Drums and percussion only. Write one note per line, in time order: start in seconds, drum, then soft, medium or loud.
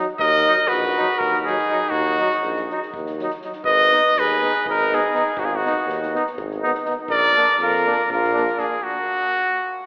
0.19 kick medium
0.69 snare soft
0.83 snare soft
0.97 snare soft
1.09 snare soft
1.21 kick medium
1.33 snare soft
1.46 snare soft
1.58 snare soft
1.68 snare soft
1.92 kick medium
2.05 snare soft
2.18 snare soft
2.31 snare soft
2.42 snare soft
2.56 snare soft
2.70 snare soft
2.82 snare soft
2.94 kick medium
3.06 snare soft
3.19 snare soft
3.30 snare soft
3.42 snare soft
3.53 snare soft
3.64 kick medium
3.92 snare soft
4.15 snare soft
4.29 snare soft
4.43 snare soft
4.55 snare soft
4.66 kick medium
4.79 snare soft
4.92 snare soft
5.15 snare soft
5.37 kick medium
5.66 snare soft
5.89 snare soft
6.03 snare soft
6.15 snare soft
6.27 snare soft
6.38 kick medium
6.51 snare soft
6.64 snare soft
6.75 snare soft
6.85 snare soft
7.08 kick medium
7.36 snare soft
7.59 snare soft
7.73 snare soft
7.88 snare soft
8.00 snare soft
8.10 kick medium
8.24 snare soft
8.37 snare soft
8.48 snare soft
8.59 snare soft